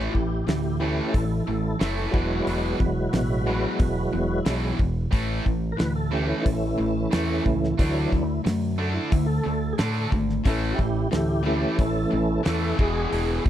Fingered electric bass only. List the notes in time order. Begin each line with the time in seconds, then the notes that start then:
0.15 A1
0.48 D2
1.14 A1
1.48 A1
1.81 F#1
2.14 E1
2.47 E1
2.81 E1
3.13 A1
3.80 E1
4.13 E1
4.46 B1
4.80 E1
5.13 A1
5.46 A1
5.81 D2
6.46 A1
6.80 A1
7.14 E2
7.47 C#2
7.79 D2
8.13 D2
8.46 F#2
9.13 D2
9.46 D2
9.80 A2
10.13 G#1
10.46 A1
10.79 A1
11.13 D2
11.79 A1
12.13 A1
12.47 E2
12.79 E1
13.12 E1
13.46 E1